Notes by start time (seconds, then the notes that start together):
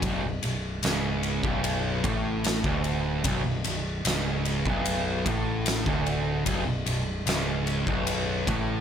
0.02 B0 B1, kick, ride
0.23 B0 B1
0.43 B0 B1, ride
0.83 C#1 C#2, snare, ride
1.23 ride
1.43 B0 B1, kick
1.64 ride
2.04 A1 A2, kick, ride
2.44 snare, ride
2.64 D1 D2, kick
2.84 ride
3.24 B0 B1, kick, ride
3.44 B0 B1
3.64 B0 B1, ride
4.05 C#1 C#2, snare, ride
4.45 ride
4.65 B0 B1, kick
4.85 ride
5.26 A1 A2, kick, ride
5.66 snare, ride
5.86 D1 D2, kick
6.06 ride
6.45 B0 B1, kick, ride
6.66 B0 B1
6.86 B0 B1, ride
7.26 C#1 C#2, snare, ride
7.67 ride
7.87 B0 B1, kick
8.07 ride
8.47 A1 A2, kick, ride